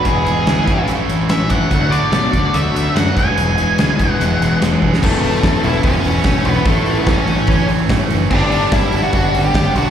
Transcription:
0.05 picked electric bass E1, twelve-string acoustic guitar E2 B2 E3 G#3 B3 E4, lead electric guitar G#4, kick, closed hi-hat
0.23 distorted electric guitar E4, closed hi-hat
0.28 twelve-string acoustic guitar E3 G#3 B3 E4
0.46 picked electric bass D2, twelve-string acoustic guitar E3 G#3 B3 E4, snare, closed hi-hat
0.66 picked electric bass A1, distorted electric guitar A2 E3, twelve-string acoustic guitar A3 C#4 E4, kick, closed hi-hat
0.72 overdriven electric guitar E4
0.87 picked electric bass A1, twelve-string acoustic guitar A2 E3 A3 C#4 E4, closed hi-hat
1.09 picked electric bass A1, closed hi-hat
1.29 picked electric bass A1, twelve-string acoustic guitar E3 A3 C#4 E4, lead electric guitar E5, snare, closed hi-hat
1.50 picked electric bass A1, overdriven electric guitar E3, distorted electric guitar A3 C#4 E4, lead electric guitar F#5, kick, closed hi-hat
1.55 overdriven electric guitar A2
1.71 picked electric bass D2, twelve-string acoustic guitar D3 F#3 A3 D4 E4, distorted electric guitar F#4, kick, closed hi-hat
1.90 twelve-string acoustic guitar D4 E4, distorted electric guitar F#4, lead electric guitar D5, closed hi-hat
1.94 twelve-string acoustic guitar A3
2.11 picked electric bass B2, distorted electric guitar D3 F#4, twelve-string acoustic guitar F#3 A3 D4 E4, snare, closed hi-hat
2.32 picked electric bass D2, twelve-string acoustic guitar A3 D4 E4, distorted electric guitar F#4, kick, closed hi-hat
2.54 picked electric bass D2, twelve-string acoustic guitar D3 F#3 A3 D4 E4, distorted electric guitar F#4, lead electric guitar E5, closed hi-hat
2.75 picked electric bass D2, snare, closed hi-hat
2.94 picked electric bass F#2, distorted electric guitar D3 F#4, twelve-string acoustic guitar F#3 A3 D4 E4, lead electric guitar F#5, snare, closed hi-hat
3.16 picked electric bass E1, twelve-string acoustic guitar E2 B2 E3 G#3 B3 E4, distorted electric guitar G#4, lead electric guitar G#5, kick, closed hi-hat
3.36 picked electric bass E1, distorted electric guitar E2 B2 E3 G#3 B3 G#4, closed hi-hat
3.58 twelve-string acoustic guitar E3 G#3 B3 E4, distorted electric guitar G#4, closed hi-hat
3.78 picked electric bass D2, twelve-string acoustic guitar E3 G#3 B3 E4, distorted electric guitar G#4, snare, closed hi-hat
3.98 picked electric bass E1, twelve-string acoustic guitar E3 G#3 B3 E4, distorted electric guitar G#4, kick, closed hi-hat
4.03 overdriven electric guitar E2 B2
4.12 lead electric guitar F#5
4.20 picked electric bass E1, twelve-string acoustic guitar E2 B2 E3 G#3 B3 E4, distorted electric guitar G#4, closed hi-hat
4.41 picked electric bass E1, snare, closed hi-hat
4.62 picked electric bass E1, twelve-string acoustic guitar E3 G#3 B3 E4, distorted electric guitar G#4, snare, closed hi-hat
4.81 picked electric bass E1, distorted electric guitar E3 G#3 B3 G#4, kick
4.94 snare
5.01 picked electric bass E1, twelve-string acoustic guitar E2 B2 E3 A3 B3 E4, lead electric guitar A3, kick, crash
5.05 overdriven electric guitar A4
5.24 distorted electric guitar B2, open hi-hat
5.35 snare
5.43 picked electric bass E1, twelve-string acoustic guitar E3 A3 B3 E4, kick, snare, open hi-hat
5.64 picked electric bass E1, twelve-string acoustic guitar E3 A3 B3 E4, lead electric guitar E4, open hi-hat
5.83 picked electric bass E1, twelve-string acoustic guitar E2 B2 E3 A3 B3 E4, lead electric guitar C#4, kick, open hi-hat
6.04 picked electric bass E1, distorted electric guitar E3, open hi-hat
6.24 picked electric bass E1, twelve-string acoustic guitar E3 A3 B3, kick, snare, open hi-hat
6.28 twelve-string acoustic guitar E4
6.45 picked electric bass B1, lead electric guitar B3, twelve-string acoustic guitar E4, open hi-hat
6.49 twelve-string acoustic guitar E3 A3 B3
6.65 picked electric bass A1, twelve-string acoustic guitar A2 E3 A3 C#4 E4, lead electric guitar A3, overdriven electric guitar A4, kick, open hi-hat
6.86 distorted electric guitar E3, open hi-hat
6.99 lead electric guitar B3
7.06 picked electric bass A1, twelve-string acoustic guitar E3 A3, lead electric guitar C#4, kick, snare, open hi-hat
7.10 twelve-string acoustic guitar C#4 E4
7.27 picked electric bass A1, distorted electric guitar A3, open hi-hat
7.32 twelve-string acoustic guitar A3 C#4 E4
7.47 picked electric bass A1, twelve-string acoustic guitar A2, distorted electric guitar C#4, kick, open hi-hat
7.52 twelve-string acoustic guitar E3 A3 C#4 E4
7.67 picked electric bass A1, distorted electric guitar E3, open hi-hat
7.89 picked electric bass A1, twelve-string acoustic guitar E3 A3 C#4 E4, kick, snare, open hi-hat
8.10 picked electric bass F#1, twelve-string acoustic guitar A3 C#4 E4, open hi-hat
8.31 picked electric bass G1, twelve-string acoustic guitar G2 D3 G3 B3 D4 G4, lead electric guitar D4, kick, crash
8.50 distorted electric guitar D3, open hi-hat
8.72 picked electric bass G1, twelve-string acoustic guitar G3 B3 D4 G4, lead electric guitar E4, kick, snare, open hi-hat
8.92 picked electric bass G1, twelve-string acoustic guitar G3 B3 D4 G4, open hi-hat
9.03 lead electric guitar F#4
9.12 picked electric bass G1, twelve-string acoustic guitar G2 D3 G3 B3, distorted electric guitar D4, kick, open hi-hat
9.16 twelve-string acoustic guitar D4
9.33 picked electric bass G1, distorted electric guitar G3, open hi-hat
9.45 lead electric guitar G4
9.54 picked electric bass G1, twelve-string acoustic guitar G3 D4, distorted electric guitar B3, kick, snare, open hi-hat
9.75 picked electric bass B1, distorted electric guitar D4, lead electric guitar F#4, open hi-hat

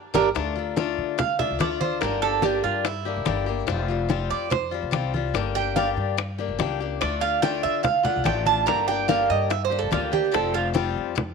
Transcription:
0.14 upright bass G1, steel-string acoustic guitar G3 A#3 D4, cuban tres D4 G4 A#4, high bongo, high conga
0.35 upright bass D2, steel-string acoustic guitar D3 A3 D4 F4, high bongo, high conga
0.56 steel-string acoustic guitar A3 D4 F4, high conga
0.76 steel-string acoustic guitar D3 A3 D4 F4, high bongo, high conga
0.98 upright bass D3, high conga
1.18 cuban tres F5, muted steel-string acoustic guitar stroke, high bongo, high conga, low conga
1.39 steel-string acoustic guitar A3 D4 F4, cuban tres E5, high conga, low conga
1.51 upright bass D2
1.59 upright bass D2, steel-string acoustic guitar D3 A3 D4 F4, cuban tres D5, high bongo, low bongo, high conga
1.81 steel-string acoustic guitar A3 D4 F4, cuban tres C5, high conga
2.01 upright bass G1, steel-string acoustic guitar D3 G3 A#3 D4 G4, cuban tres A#4, high bongo, high conga
2.22 steel-string acoustic guitar A#3 D4 G4, cuban tres A4, high bongo, high conga
2.42 steel-string acoustic guitar D3 G3 A#3 D4 G4, cuban tres G4, high bongo, high conga
2.63 upright bass G2, cuban tres F4, high bongo, high conga
2.84 cuban tres E4, muted steel-string acoustic guitar stroke, high bongo, high conga
3.05 steel-string acoustic guitar A#3 D4 G4, high bongo, high conga
3.16 upright bass G1
3.25 upright bass G1, steel-string acoustic guitar D3 G3 A#3 D4 G4, high bongo, low bongo, high conga
3.46 steel-string acoustic guitar A#3 D4 G4
3.67 upright bass F1, steel-string acoustic guitar F3 G3 C4 F4, high bongo, high conga
3.88 steel-string acoustic guitar G3 C4 F4, high conga
4.09 steel-string acoustic guitar F3 G3 C4 F4, high bongo, high conga
4.30 upright bass F2, cuban tres D5, high conga
4.50 cuban tres C5, muted steel-string acoustic guitar stroke, high bongo, high conga, low conga
4.71 steel-string acoustic guitar G3 C4 F4, high conga
4.82 upright bass F1
4.91 upright bass C2, steel-string acoustic guitar F3 G3 C4 F4, high bongo, low bongo, high conga
5.14 steel-string acoustic guitar G3 C4 F4, high conga
5.34 upright bass G1, steel-string acoustic guitar D3 G3 A#3 D4 G4, high bongo, high conga
5.55 steel-string acoustic guitar A#3 D4 G4, cuban tres G5, high bongo, high conga
5.76 steel-string acoustic guitar D3 G3 A#3 D4 G4, cuban tres F5, high bongo, high conga
5.97 upright bass G2, high bongo, high conga
6.17 muted steel-string acoustic guitar stroke, high bongo, high conga
6.38 steel-string acoustic guitar A#3 D4 G4, high bongo, high conga
6.48 upright bass G1
6.59 upright bass C#2, steel-string acoustic guitar D3 G3 A#3 D4 G4, high bongo, low bongo, high conga
6.80 steel-string acoustic guitar A#3 D4 G4
7.01 upright bass D2, steel-string acoustic guitar D3 A3 D4 F4, cuban tres D5, high bongo, high conga
7.20 steel-string acoustic guitar A3 D4 F4, cuban tres F5, high conga
7.42 steel-string acoustic guitar D3 A3 D4 F4, cuban tres G5, high bongo, high conga
7.63 upright bass D3, cuban tres E5, high conga
7.83 cuban tres F5, muted steel-string acoustic guitar stroke, high bongo, high conga, low conga
8.03 steel-string acoustic guitar A3 D4 F4, cuban tres F#5, high conga, low conga
8.16 upright bass D2
8.24 upright bass A1, steel-string acoustic guitar D3 A3 D4 F4, cuban tres G5, high bongo, low bongo, high conga
8.45 steel-string acoustic guitar A3 D4 F4, cuban tres A5, high conga
8.66 upright bass G1, steel-string acoustic guitar D3 G3 A#3 D4 G4, cuban tres A#5, high bongo, high conga
8.88 steel-string acoustic guitar A#3 D4 G4, cuban tres G5, high bongo, high conga
9.08 steel-string acoustic guitar D3 G3 A#3 D4 G4, cuban tres F5, high bongo, high conga
9.30 upright bass G2, cuban tres D#5, high bongo, high conga
9.50 cuban tres E5, muted steel-string acoustic guitar stroke, high bongo, high conga
9.65 cuban tres C5
9.70 steel-string acoustic guitar A#3 D4 G4, high bongo, high conga
9.79 upright bass G1, cuban tres A4
9.91 upright bass D2, steel-string acoustic guitar D3 G3 A#3 D4 G4, cuban tres F4, high bongo, low bongo, high conga
10.12 steel-string acoustic guitar A#3 D4 G4, cuban tres G4, high conga
10.31 upright bass F1, steel-string acoustic guitar F3 G3 C4 F4, cuban tres A4, high bongo, high conga
10.54 steel-string acoustic guitar G3 C4 F4, cuban tres F4, high conga
10.73 steel-string acoustic guitar F3 G3 C4 F4, high bongo, high conga
10.96 upright bass F2, high conga
11.15 muted steel-string acoustic guitar stroke, high bongo, high conga, low conga

